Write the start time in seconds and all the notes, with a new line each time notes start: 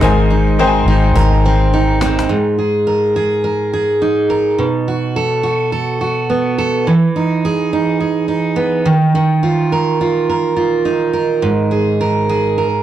Already playing: D#4 A#4
0.01 G#1 G#2 D#4 A#4 C5 G#5, cajon bass
0.19 cajon slap
0.30 D#4, cajon slap
0.47 cajon slap
0.59 C4 D#4 A#4 C5 G5, cajon slap
0.67 G#5
0.75 cajon slap
0.86 G#1 D#4
1.04 cajon slap
1.15 G#1 A#4, cajon bass
1.33 cajon slap
1.45 C4
1.61 cajon slap
1.73 D#4, cajon slap
1.90 cajon slap
2.01 C4, cajon slap
2.19 cajon slap
2.29 G#2
2.58 G#4
2.87 A#4
3.16 G#4
3.44 A#4
3.73 G#4
4.02 D#4
4.30 A#4
4.58 B2
4.88 F#4
5.16 A4
5.43 F#4
5.72 A4
6.01 F#4
6.30 B3
6.58 A4
6.87 E3
7.16 D#4
7.45 G#4
7.73 D#4
8.00 G#4
8.28 D#4
8.56 B3
8.86 D#3
9.15 D#3
9.43 F4
9.72 A#4
10.01 F4
10.29 A#4
10.56 F4
10.85 D#4
11.13 A#4
11.42 G#2
11.71 G#4
12.01 A#4
12.29 G#4
12.58 A#4